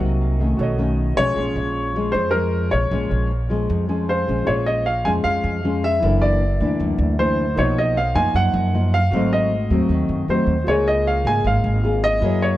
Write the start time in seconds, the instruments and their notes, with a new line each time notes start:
Already playing: nylon-string guitar C3 F#3 A#3 D#4, grand piano F#4 A#4 C5 D#5
0.00 upright bass C2
0.40 nylon-string guitar D#3 A3 C#4
0.57 upright bass B1, nylon-string guitar B2, grand piano F#4 A4 C#5
0.62 grand piano D#5
0.78 nylon-string guitar D#3 A3 C#4
1.17 upright bass B1, nylon-string guitar F3 G#3 C#4, grand piano C#5
1.34 upright bass A#1, nylon-string guitar A#2, grand piano F4 G#4 C6
1.40 grand piano C#4
1.56 upright bass A#1
1.96 nylon-string guitar F3 G#3 C#4
2.12 upright bass F2, nylon-string guitar F2, grand piano C5
2.31 nylon-string guitar F3 G#3, grand piano A#4
2.35 nylon-string guitar C#4
2.71 upright bass A#1, grand piano C#5
2.91 upright bass A#1, nylon-string guitar A#2 F3 G#3 C#4
3.11 upright bass A#1
3.50 nylon-string guitar F3 G#3 C#4
3.70 upright bass F2, nylon-string guitar F2
3.89 nylon-string guitar F3 G#3 C#4, grand piano G#5
4.09 grand piano C5 F5
4.27 upright bass A#1, nylon-string guitar F3 G#3 C#4
4.45 upright bass A#1, nylon-string guitar A#2, grand piano F4 G#4 C#5
4.49 grand piano C5 C#5
4.66 grand piano D#5
4.86 grand piano F5
5.05 upright bass F2, nylon-string guitar F3 G#3 C#4, grand piano G#5
5.24 upright bass F2, nylon-string guitar F2, grand piano F5
5.44 upright bass F2
5.64 nylon-string guitar F3 G#3 C#4
5.84 grand piano E5
6.00 upright bass F#1, nylon-string guitar F#2 E3 A#3, grand piano E4 A4 A#4
6.04 nylon-string guitar D4, grand piano D5
6.22 grand piano D5
6.60 upright bass D2, nylon-string guitar E3 A#3 D4
6.80 upright bass D2, nylon-string guitar F#2
6.98 upright bass D2
7.19 nylon-string guitar E3 A#3 D4, grand piano C5
7.54 upright bass B1, nylon-string guitar B2 F3 A#3 D#4, grand piano D#4 A#4
7.59 grand piano C#5 D#5
7.78 grand piano D#5
7.97 grand piano F5
8.15 upright bass F#2, nylon-string guitar F3 A#3 D#4, grand piano G#5
8.34 upright bass F#2, nylon-string guitar F#2, grand piano F#5
8.54 upright bass F#2
8.74 nylon-string guitar F3 A#3 D#4
8.94 grand piano F5
9.11 upright bass G#1, nylon-string guitar G#2 F#3 A3 C4, grand piano F#4 A4 C5
9.16 grand piano D#5
9.33 grand piano D#5
9.70 upright bass D#2, nylon-string guitar F#3 A3 C4
9.89 upright bass D#2, nylon-string guitar D#3
10.09 upright bass F#2
10.28 upright bass F2, nylon-string guitar F#3 A3 C4, grand piano C5
10.47 upright bass D#2
10.64 upright bass C#2, nylon-string guitar C#3, grand piano F4 G#4
10.68 nylon-string guitar A#3 F4 G#4, grand piano A#4 C#5 D#5
10.88 grand piano D#5
11.07 grand piano F5
11.25 upright bass G#1, nylon-string guitar A#3 F4 G#4, grand piano G#5
11.44 upright bass G#1, nylon-string guitar G#2, grand piano F5
11.64 upright bass G#1
11.84 nylon-string guitar A#3 F4 G#4
12.04 grand piano D#5
12.20 upright bass F#2, nylon-string guitar F#3 A#3 E4 G#4, grand piano E4 G#4 A#4
12.26 grand piano C#5
12.42 grand piano C#5